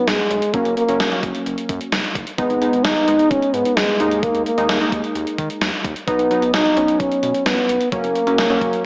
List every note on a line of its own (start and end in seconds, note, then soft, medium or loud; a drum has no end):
0.00 0.20 F#3 medium
0.00 0.20 B3 medium
0.00 0.20 D#4 medium
0.07 0.18 B1 loud
0.07 0.56 G#3 medium
0.07 snare loud
0.07 closed hi-hat medium
0.19 closed hi-hat soft
0.31 0.41 B1 loud
0.31 closed hi-hat medium
0.42 closed hi-hat medium
0.54 0.64 F#1 loud
0.54 0.84 F#3 medium
0.54 0.84 A#3 medium
0.54 0.76 A#3 medium
0.54 0.84 C#4 medium
0.54 kick loud
0.54 closed hi-hat medium
0.65 0.76 F#1 medium
0.65 closed hi-hat soft
0.77 1.20 A#3 medium
0.77 closed hi-hat medium
0.89 0.99 F#1 loud
0.89 1.09 F#3 medium
0.89 1.09 A#3 medium
0.89 1.09 C#4 medium
0.89 closed hi-hat medium
1.00 1.10 F#1 medium
1.00 snare loud
1.00 closed hi-hat medium
1.12 1.93 F#3 medium
1.12 1.93 A#3 medium
1.12 1.93 C#4 medium
1.12 closed hi-hat soft
1.23 1.33 F#1 medium
1.23 kick medium
1.23 closed hi-hat medium
1.35 closed hi-hat medium
1.46 1.57 F#1 medium
1.46 closed hi-hat medium
1.58 closed hi-hat medium
1.69 1.80 F#2 loud
1.69 kick medium
1.69 closed hi-hat medium
1.81 closed hi-hat medium
1.92 2.03 F#1 loud
1.92 snare loud
1.92 closed hi-hat medium
2.04 closed hi-hat soft
2.15 2.26 F#1 medium
2.15 kick medium
2.15 closed hi-hat medium
2.27 closed hi-hat medium
2.38 2.49 G#1 loud
2.38 2.59 G#3 medium
2.38 2.86 B3 loud
2.38 2.59 B3 medium
2.38 2.59 D#4 medium
2.38 kick loud
2.38 closed hi-hat medium
2.50 2.60 G#1 medium
2.50 closed hi-hat soft
2.62 3.02 G#3 medium
2.62 3.02 B3 medium
2.62 3.02 D#4 medium
2.62 closed hi-hat medium
2.73 2.83 G#1 loud
2.73 closed hi-hat medium
2.84 2.95 G#1 loud
2.84 3.32 D#4 loud
2.84 snare loud
2.84 closed hi-hat medium
2.96 closed hi-hat soft
3.08 3.18 G#1 loud
3.08 3.89 G#3 medium
3.08 3.89 B3 medium
3.08 3.89 D#4 medium
3.08 closed hi-hat medium
3.19 closed hi-hat medium
3.31 3.41 G#1 loud
3.31 3.55 C#4 loud
3.31 kick loud
3.31 closed hi-hat medium
3.42 closed hi-hat medium
3.54 3.64 G#2 medium
3.54 3.78 B3 medium
3.54 closed hi-hat medium
3.65 closed hi-hat medium
3.77 3.87 G#1 loud
3.77 4.25 G#3 medium
3.77 snare loud
3.77 closed hi-hat medium
3.89 closed hi-hat soft
4.00 4.31 D#2 loud
4.00 4.51 G#3 medium
4.00 4.51 A#3 medium
4.00 4.51 D#4 medium
4.00 closed hi-hat medium
4.11 closed hi-hat medium
4.23 4.46 A#3 medium
4.23 kick loud
4.23 closed hi-hat medium
4.35 4.45 D#2 medium
4.35 closed hi-hat soft
4.46 4.89 A#3 medium
4.46 closed hi-hat medium
4.58 4.68 D#2 medium
4.58 4.78 G#3 medium
4.58 4.78 A#3 medium
4.58 4.78 D#4 medium
4.58 closed hi-hat medium
4.69 4.79 D#2 loud
4.69 snare loud
4.69 closed hi-hat medium
4.81 5.62 G#3 medium
4.81 5.62 A#3 medium
4.81 5.62 D#4 medium
4.81 closed hi-hat soft
4.92 5.03 D#2 loud
4.92 kick medium
4.92 closed hi-hat medium
5.04 closed hi-hat medium
5.15 5.26 D#2 loud
5.15 closed hi-hat medium
5.27 closed hi-hat soft
5.38 5.49 D#3 loud
5.38 kick medium
5.38 closed hi-hat medium
5.50 closed hi-hat medium
5.61 5.72 D#2 loud
5.61 snare loud
5.61 closed hi-hat medium
5.73 closed hi-hat soft
5.84 5.95 D#2 medium
5.84 kick medium
5.84 closed hi-hat medium
5.96 closed hi-hat medium
6.08 6.18 B1 loud
6.08 6.28 F#3 medium
6.08 6.50 B3 medium
6.08 6.28 B3 medium
6.08 6.28 D#4 medium
6.08 kick loud
6.08 closed hi-hat medium
6.19 6.29 B1 loud
6.19 closed hi-hat soft
6.31 6.71 F#3 medium
6.31 6.71 B3 medium
6.31 6.71 D#4 medium
6.31 closed hi-hat medium
6.42 6.53 B1 loud
6.42 closed hi-hat medium
6.54 6.64 B1 loud
6.54 7.01 D#4 loud
6.54 snare loud
6.54 closed hi-hat medium
6.66 closed hi-hat soft
6.77 6.87 B1 medium
6.77 7.58 F#3 medium
6.77 7.58 B3 medium
6.77 7.58 C#4 medium
6.77 closed hi-hat medium
6.88 closed hi-hat medium
7.00 7.10 B1 loud
7.00 7.48 C#4 loud
7.00 kick medium
7.00 closed hi-hat medium
7.12 closed hi-hat soft
7.23 7.33 B2 loud
7.23 closed hi-hat medium
7.34 closed hi-hat medium
7.46 7.57 B1 loud
7.46 7.92 B3 medium
7.46 snare loud
7.46 closed hi-hat medium
7.58 closed hi-hat soft
7.69 7.80 B1 loud
7.69 closed hi-hat medium
7.81 closed hi-hat medium
7.92 8.03 F#1 loud
7.92 8.23 F#3 medium
7.92 8.86 A#3 medium
7.92 8.23 A#3 medium
7.92 8.23 C#4 medium
7.92 kick loud
7.92 closed hi-hat medium
8.04 8.14 F#1 loud
8.04 closed hi-hat soft
8.15 closed hi-hat medium
8.27 8.37 F#1 loud
8.27 8.47 F#3 medium
8.27 8.47 A#3 medium
8.27 8.47 C#4 medium
8.27 closed hi-hat medium
8.38 8.49 F#1 loud
8.38 snare loud
8.38 closed hi-hat medium
8.50 8.85 F#3 medium
8.50 8.85 A#3 medium
8.50 8.85 C#4 medium
8.50 closed hi-hat soft
8.61 8.72 F#1 loud
8.61 kick medium
8.61 closed hi-hat medium
8.73 closed hi-hat medium